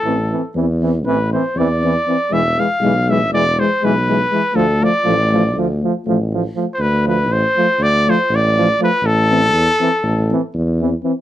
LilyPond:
<<
  \new Staff \with { instrumentName = "Trumpet" } { \time 9/8 \tempo 4. = 80 a'4 r4 b'8 c''8 d''4. | e''8 f''4 e''8 d''8 c''8 b'4. | a'8 d''4. r2 r16. c''32 | b'8 b'8 c''4 d''8 c''8 d''4 b'8 |
a'2. r4. | }
  \new Staff \with { instrumentName = "Euphonium" } { \time 9/8 c'8 c'8 c'8 c'8 c'8 c'8 c'8 c'8 c'8 | gis8 gis8 gis8 gis8 gis8 gis8 gis8 gis8 gis8 | a8 a8 a8 a8 a8 a8 a8 a8 a8 | r8 a8 r8 a8 r8 a8 r8 a8 a8 |
r8 c'8 r8 c'8 r8 c'8 r8 c'8 c'8 | }
  \new Staff \with { instrumentName = "Trombone" } { \clef bass \time 9/8 e8 e8 e8 e8 e8 e8 e8 e8 e8 | e8 e8 e8 e8 e8 e8 e8 e8 e8 | f8 f8 f8 f8 f8 f8 f8 f8 f8 | r8 f8 r8 f8 r8 f8 r8 f8 f8 |
r8 e8 r8 e8 r8 e8 r8 e8 e8 | }
  \new Staff \with { instrumentName = "Tuba" } { \clef bass \time 9/8 a,,4 e,4 a,,4 e,4. | e,,4 b,,4 e,,4 b,,4. | d,4 a,,4 d,4 a,,4. | d,4 a,,8 r8 d,4 a,,4. |
a,,4 e,8 r8 a,,4 e,4. | }
>>